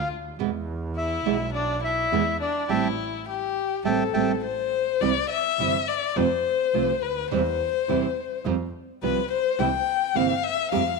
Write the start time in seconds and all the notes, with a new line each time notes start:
0.11 D2
0.39 E2 B2 E3 G#3 B3 E4
0.97 E4 E5
1.25 B1 B2 E3 G#3 B3 E4
1.54 D4 D5
1.83 E4 E5
2.11 E2 B2 E3 G#3 B3 E4
2.41 D4 D5
2.69 A1 G3 A3 C4 E4 E5 G5 A5
3.29 G4
3.84 A1 G3 A3 C4 A4 E5 G5 A5
4.14 A1 G3 A3 C4 E5 G5 A5
4.44 C5
5.01 C2 C3 E3 G3 C4 E4 D5
5.30 E5
5.59 G1 C3 E3 G3 C4 E4
5.88 D5
6.16 F2 C3 F3 A3 C4 F4 C5
6.74 C2 C3 F3 A3 C4 F4
7.02 D2 B4
7.31 E2 C3 E3 G3 C4 E4 C5
7.88 E2 C3 E3 G3 C4 E4
8.45 F2 F3 G3 C4 F4
9.02 C2 F3 G3 C4 F4 B4
9.31 C5
9.59 C2 C3 E3 A#3 C4 E4 G5
10.15 G1 C3 E3 A#3 C4 E4 F5
10.44 E5
10.72 F2 F3 G3 C4 G4 F5